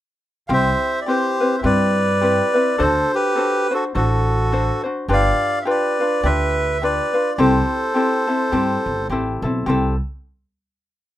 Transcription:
0.48 0.71 C2 medium
0.48 1.07 C4 medium
0.48 1.07 E4 medium
0.48 1.05 G4 medium
0.48 0.52 F5 medium
0.53 1.00 C5 medium
0.53 1.05 E5 loud
1.02 1.07 D5 medium
1.06 1.41 C4 medium
1.06 1.40 E4 medium
1.06 1.40 G4 soft
1.06 1.56 G4 medium
1.06 1.39 B4 medium
1.06 1.61 C5 medium
1.40 1.62 C4 soft
1.40 1.63 E4 soft
1.40 1.64 B4 medium
1.59 1.65 E5 medium
1.63 2.39 G2 medium
1.63 2.21 C4 medium
1.63 2.21 E4 medium
1.63 2.20 G4 soft
1.63 2.22 B4 medium
1.63 2.76 B4 medium
1.63 2.83 D5 medium
2.21 2.54 C4 medium
2.21 2.54 E4 medium
2.21 2.55 G4 medium
2.21 2.53 B4 medium
2.54 2.78 C4 soft
2.54 2.79 E4 soft
2.54 2.79 B4 medium
2.78 3.01 D2 medium
2.78 3.37 D4 medium
2.78 3.36 F#4 medium
2.78 3.34 A4 medium
2.78 3.12 A4 medium
2.78 3.37 C5 medium
2.78 3.15 C5 medium
3.15 3.67 G4 medium
3.15 3.73 B4 medium
3.35 3.71 D4 soft
3.35 3.70 F#4 medium
3.35 3.70 A4 medium
3.35 3.70 C5 medium
3.71 3.94 D4 soft
3.71 3.94 F#4 soft
3.71 3.85 F#4 medium
3.71 3.84 A4 medium
3.71 3.95 C5 medium
3.95 4.70 A1 medium
3.95 4.52 D4 medium
3.95 4.52 F#4 medium
3.95 4.82 F#4 medium
3.95 4.51 A4 medium
3.95 4.82 A4 medium
3.95 4.52 C5 medium
4.52 4.85 D4 medium
4.52 4.84 F#4 medium
4.52 4.85 A4 medium
4.52 4.82 C5 medium
4.83 5.08 D4 soft
4.83 5.09 F#4 soft
4.83 5.08 C5 soft
5.08 5.30 G1 medium
5.08 5.65 D4 medium
5.08 5.66 F4 medium
5.08 5.65 G4 medium
5.08 5.66 B4 medium
5.13 5.59 D5 medium
5.13 5.64 F5 loud
5.62 5.99 G4 medium
5.62 5.67 E5 medium
5.67 6.00 D4 medium
5.67 5.99 F4 medium
5.67 5.99 B4 medium
5.67 6.21 B4 medium
5.67 6.27 D5 medium
6.00 6.24 D4 soft
6.00 6.24 F4 soft
6.00 6.24 B4 medium
6.23 6.98 D2 medium
6.23 6.82 D4 medium
6.23 6.82 F4 medium
6.23 6.81 G4 medium
6.23 6.78 B4 medium
6.23 6.82 B4 medium
6.23 6.83 E5 medium
6.82 7.14 D4 medium
6.82 7.13 F4 medium
6.82 7.15 G4 soft
6.82 7.12 B4 medium
6.82 7.31 B4 medium
6.82 7.34 D5 medium
7.13 7.39 D4 soft
7.13 7.38 F4 soft
7.13 7.38 B4 soft
7.35 7.60 C2 medium
7.35 7.95 C4 medium
7.35 7.95 E4 medium
7.35 7.94 G4 medium
7.35 7.40 D5 medium
7.40 7.96 A4 medium
7.40 9.08 A4 medium
7.40 9.07 C5 medium
7.94 8.28 C4 medium
7.94 8.27 E4 soft
7.94 8.28 G4 medium
7.94 8.26 A4 medium
8.27 8.51 C4 soft
8.27 8.52 E4 medium
8.27 8.52 A4 medium
8.52 8.74 G2 medium
8.52 9.11 C4 medium
8.52 9.12 E4 medium
8.52 9.10 G4 medium
8.52 9.12 A4 medium
8.86 9.08 G1 medium
9.09 9.40 A1 medium
9.09 9.44 C4 medium
9.09 9.43 E4 medium
9.09 9.44 G4 medium
9.09 9.42 A4 medium
9.42 9.64 B1 medium
9.42 9.66 C4 soft
9.42 9.67 E4 soft
9.42 9.67 A4 medium
9.66 9.98 C2 medium
9.66 9.94 C4 medium
9.66 9.95 E4 medium
9.66 9.94 G4 medium
9.66 9.95 A4 medium

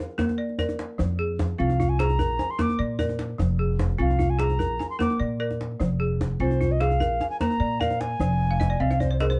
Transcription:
0.00 0.17 A#4 medium
0.10 djembe slap soft
0.18 0.58 A#3 medium
0.18 0.58 A#4 medium
0.18 djembe slap medium
0.18 djembe bass medium
0.29 djembe tone medium
0.38 0.58 D5 medium
0.49 djembe slap soft
0.59 0.99 A#4 medium
0.59 1.19 D5 medium
0.59 djembe slap soft
0.59 djembe bass medium
0.69 djembe slap soft
0.69 djembe tone medium
0.79 djembe slap medium
0.98 1.53 F2 medium
0.98 1.39 F3 medium
0.98 djembe tone medium
0.98 djembe bass medium
1.19 1.79 G#4 medium
1.39 djembe slap medium
1.39 djembe tone medium
1.39 djembe bass medium
1.58 2.19 C2 loud
1.58 1.99 C4 medium
1.58 1.78 F4 medium
1.58 1.91 F5 medium
1.70 djembe tone medium
1.80 2.39 F4 medium
1.80 djembe bass medium
1.89 2.01 G#5 medium
1.99 2.19 G#4 medium
1.99 2.52 A#5 medium
1.99 djembe slap medium
2.09 djembe tone soft
2.19 2.37 A#1 medium
2.19 2.57 A#4 medium
2.19 djembe bass medium
2.39 2.99 G#5 medium
2.39 djembe tone medium
2.49 2.63 C6 medium
2.49 djembe slap soft
2.59 2.99 A#3 medium
2.59 2.98 A#4 medium
2.59 2.80 D6 medium
2.59 djembe slap medium
2.59 djembe bass medium
2.69 djembe tone medium
2.79 3.33 A#2 medium
2.79 2.98 D5 medium
2.99 3.39 A#4 medium
2.99 3.59 D5 medium
2.99 djembe bass medium
3.09 djembe tone medium
3.19 djembe slap medium
3.29 djembe slap soft
3.38 3.93 F1 medium
3.38 3.79 F3 medium
3.38 djembe tone medium
3.38 djembe bass medium
3.59 4.19 G#4 medium
3.79 djembe slap medium
3.79 djembe bass medium
3.98 4.59 C2 loud
3.98 4.39 C4 medium
3.98 4.18 F4 medium
3.98 4.31 F5 medium
4.10 djembe tone medium
4.19 4.79 F4 medium
4.19 djembe bass medium
4.30 4.42 G#5 medium
4.39 4.59 G#4 medium
4.39 4.90 A#5 medium
4.39 djembe slap medium
4.50 djembe tone medium
4.59 4.77 A#1 medium
4.59 4.98 A#4 medium
4.59 djembe bass medium
4.79 5.40 G#5 medium
4.79 djembe tone medium
4.90 4.99 C6 medium
4.90 djembe slap soft
4.99 5.39 A#3 medium
4.99 5.39 A#4 medium
4.99 5.19 D6 medium
4.99 djembe slap medium
4.99 djembe bass medium
5.10 djembe tone soft
5.20 5.73 A#2 medium
5.20 5.39 D5 medium
5.40 5.80 A#4 medium
5.40 6.00 D5 medium
5.51 djembe tone soft
5.61 djembe slap medium
5.71 djembe slap soft
5.80 6.33 F1 medium
5.80 6.20 F3 medium
5.80 djembe tone medium
5.80 djembe bass medium
6.00 6.60 G#4 medium
6.21 djembe slap medium
6.21 djembe tone medium
6.21 djembe bass medium
6.31 djembe slap soft
6.40 7.00 C2 medium
6.40 6.81 C4 medium
6.40 6.60 F4 medium
6.40 6.73 C5 medium
6.51 djembe tone soft
6.61 7.21 F4 medium
6.61 djembe bass medium
6.72 6.82 D#5 medium
6.80 7.00 G#4 medium
6.80 7.29 F5 medium
6.80 djembe slap medium
6.90 djembe tone soft
7.00 7.18 A#1 medium
7.00 7.40 A#4 medium
7.00 djembe bass medium
7.21 7.81 G#5 medium
7.21 djembe tone medium
7.30 7.40 G#5 medium
7.30 djembe slap soft
7.40 7.81 A#3 medium
7.40 7.79 A#4 medium
7.40 7.82 A#5 loud
7.40 djembe slap medium
7.40 djembe bass medium
7.50 djembe tone soft
7.60 8.14 A#2 medium
7.60 7.79 D5 medium
7.80 8.21 A#4 medium
7.80 8.41 D5 medium
7.80 8.02 F5 medium
7.80 djembe bass medium
7.90 djembe tone soft
8.00 8.82 G#5 loud
8.00 djembe slap medium
8.10 djembe slap soft
8.20 8.73 F1 medium
8.20 8.61 F3 medium
8.20 djembe slap soft
8.20 djembe tone medium
8.20 djembe bass medium
8.40 djembe slap soft
8.51 8.69 F5 medium
8.60 8.79 D#5 medium
8.60 djembe slap medium
8.60 djembe tone medium
8.60 djembe bass medium
8.70 8.89 D5 medium
8.80 9.40 C2 medium
8.80 9.20 C4 medium
8.80 8.99 D#5 medium
8.80 9.02 F5 medium
8.91 9.09 F5 medium
8.91 djembe slap soft
8.91 djembe tone medium
9.00 9.19 C5 medium
9.00 9.19 D5 medium
9.00 djembe bass medium
9.11 9.29 C5 medium
9.11 djembe slap soft
9.20 9.40 G#4 medium
9.20 9.39 A#4 medium
9.20 9.26 D#5 medium
9.20 djembe slap medium
9.30 9.40 C5 medium
9.30 djembe slap soft
9.30 djembe tone soft

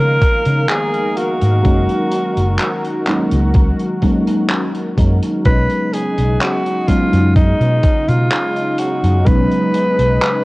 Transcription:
0.00 0.18 C#3 loud
0.00 5.42 D#3 medium
0.00 1.66 F3 medium
0.00 1.63 G#3 medium
0.00 1.64 A#3 medium
0.00 1.67 B3 medium
0.00 1.66 D#4 medium
0.00 0.70 A#4 loud
0.00 5.41 A#4 medium
0.00 1.61 F5 loud
0.22 kick loud
0.22 closed hi-hat loud
0.45 0.65 C#3 medium
0.45 closed hi-hat medium
0.69 1.18 G#4 loud
0.69 clap loud
0.69 closed hi-hat medium
0.94 closed hi-hat soft
1.17 3.07 F#4 loud
1.17 closed hi-hat medium
1.41 1.61 G#2 medium
1.41 closed hi-hat medium
1.63 1.85 F#1 loud
1.63 3.01 F#3 medium
1.63 3.01 G#3 medium
1.63 3.02 A#3 medium
1.63 3.02 C#4 medium
1.63 3.02 D#4 loud
1.63 5.41 F#4 medium
1.63 kick loud
1.63 closed hi-hat medium
1.89 closed hi-hat soft
2.11 closed hi-hat medium
2.37 2.56 F#1 medium
2.37 closed hi-hat medium
2.59 clap loud
2.59 closed hi-hat medium
2.85 closed hi-hat soft
3.06 3.28 F#3 medium
3.06 3.28 G#3 medium
3.06 3.29 A#3 medium
3.06 3.29 C#4 medium
3.06 3.29 D#4 medium
3.06 clap medium
3.06 closed hi-hat medium
3.31 3.71 C#2 loud
3.31 closed hi-hat medium
3.54 kick loud
3.54 closed hi-hat medium
3.79 closed hi-hat soft
4.01 4.92 F#3 loud
4.01 4.92 G#3 medium
4.01 4.92 A#3 medium
4.01 4.92 C#4 medium
4.01 4.93 D#4 loud
4.01 kick medium
4.01 closed hi-hat loud
4.27 closed hi-hat medium
4.49 clap loud
4.49 closed hi-hat medium
4.75 closed hi-hat soft
4.97 5.18 F#2 medium
4.97 5.40 F#3 medium
4.97 5.40 G#3 medium
4.97 5.40 A#3 medium
4.97 5.40 C#4 medium
4.97 5.40 D#4 medium
4.97 kick loud
4.97 closed hi-hat loud
5.23 closed hi-hat medium
5.44 5.66 B1 medium
5.44 10.44 C#3 medium
5.44 6.82 F#3 medium
5.44 6.82 G#3 medium
5.44 10.44 G#3 medium
5.44 6.83 B3 medium
5.44 6.83 C#4 medium
5.44 10.44 D#4 medium
5.44 6.84 D#4 loud
5.44 5.94 B4 loud
5.44 kick loud
5.44 closed hi-hat medium
5.70 closed hi-hat soft
5.93 6.42 G#4 loud
5.93 closed hi-hat loud
6.18 6.37 B1 medium
6.18 closed hi-hat medium
6.41 6.90 F#4 loud
6.41 clap loud
6.41 closed hi-hat medium
6.66 closed hi-hat soft
6.87 7.09 F#3 medium
6.87 7.09 G#3 medium
6.87 7.09 B3 medium
6.87 7.09 C#4 medium
6.87 7.10 D#4 medium
6.87 7.35 F4 medium
6.87 kick medium
6.87 closed hi-hat loud
7.13 7.52 F#2 loud
7.13 closed hi-hat medium
7.36 8.10 D#4 loud
7.36 kick loud
7.36 closed hi-hat medium
7.61 7.80 B2 loud
7.61 closed hi-hat soft
7.83 kick loud
7.83 closed hi-hat loud
8.08 8.27 B2 medium
8.08 8.81 F4 loud
8.08 closed hi-hat medium
8.32 clap loud
8.32 closed hi-hat medium
8.56 closed hi-hat soft
8.78 9.28 F#4 medium
8.78 closed hi-hat loud
9.04 9.23 F#2 medium
9.04 closed hi-hat medium
9.25 9.47 B1 medium
9.25 10.44 F#3 medium
9.25 10.44 G#3 medium
9.25 10.44 B3 medium
9.25 10.44 C#4 medium
9.25 10.44 D#4 loud
9.25 10.44 B4 loud
9.25 kick loud
9.25 closed hi-hat medium
9.52 closed hi-hat soft
9.74 closed hi-hat medium
9.99 10.18 B1 medium
9.99 closed hi-hat medium
10.22 clap loud
10.22 closed hi-hat medium

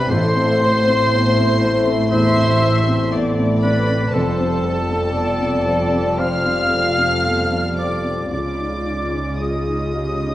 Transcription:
0.00 0.13 G2 medium
0.00 0.13 B3 medium
0.00 0.13 C4 medium
0.00 0.10 B4 medium
0.00 0.13 C5 medium
0.09 2.08 A1 medium
0.09 4.10 A1 medium
0.09 4.10 A2 medium
0.09 3.97 A3 loud
0.09 3.97 E4 loud
0.09 0.61 A4 medium
0.09 2.10 C5 loud
0.09 1.81 C5 loud
0.09 2.10 C6 loud
0.09 1.82 C6 loud
0.36 0.77 C4 medium
0.61 2.12 C5 loud
0.61 1.02 C5 medium
0.87 1.27 C4 medium
1.12 1.37 B3 medium
1.37 1.77 C4 medium
1.62 2.02 C5 medium
1.87 2.27 C4 medium
2.11 2.52 E2 medium
2.11 3.10 C5 loud
2.11 3.08 C5 loud
2.11 3.10 E5 loud
2.11 3.11 C6 loud
2.11 3.09 C6 loud
2.36 2.77 C4 medium
2.62 3.03 C5 medium
2.88 3.28 C4 medium
3.12 3.38 B3 medium
3.12 4.14 D5 loud
3.38 3.62 C4 medium
3.62 3.88 C4 medium
3.62 4.10 B4 medium
3.62 4.15 B4 medium
3.62 4.10 B5 loud
3.62 4.15 B5 medium
3.89 4.14 C4 medium
4.13 8.28 F1 medium
4.13 8.28 F2 medium
4.13 6.15 F2 medium
4.13 8.32 G3 medium
4.13 8.28 F4 medium
4.13 6.19 A4 medium
4.13 6.21 A4 medium
4.13 4.63 C5 medium
4.13 6.19 A5 medium
4.13 6.22 A5 medium
4.40 4.79 C4 medium
4.63 5.13 A4 medium
4.63 5.04 C5 medium
4.90 5.29 C4 medium
5.13 5.40 B3 soft
5.13 6.17 D5 loud
5.40 5.82 C4 medium
5.66 6.08 C5 medium
5.92 6.35 C4 medium
6.18 6.61 C3 medium
6.18 6.71 C5 medium
6.18 7.77 F5 loud
6.18 7.78 F5 loud
6.18 7.77 F6 loud
6.18 7.78 F6 loud
6.45 6.87 C4 medium
6.70 8.31 A4 medium
6.70 7.14 C5 medium
6.98 7.40 C4 soft
7.24 7.50 B3 soft
7.50 7.94 C4 soft
7.77 8.21 C5 soft
7.77 8.31 D5 medium
7.77 8.30 D6 medium
7.77 8.31 D6 medium
8.03 8.31 C4 soft
8.31 10.35 C#2 medium
8.31 10.35 C#3 medium
8.31 10.35 G#3 medium
8.31 10.35 F4 medium
8.31 9.39 D5 medium
8.31 9.44 D5 medium
8.31 9.38 D6 medium
8.31 9.39 D6 medium
8.59 8.84 D#4 soft
8.85 9.11 D#4 soft
9.12 9.56 D#4 soft
9.39 9.67 C#4 soft
9.39 9.92 G#4 medium
9.39 10.35 D#5 medium
9.39 10.35 D#6 medium
9.67 10.12 D#4 soft
9.95 10.35 G4 medium
9.95 10.35 D#5 soft
10.23 10.35 D#4 soft

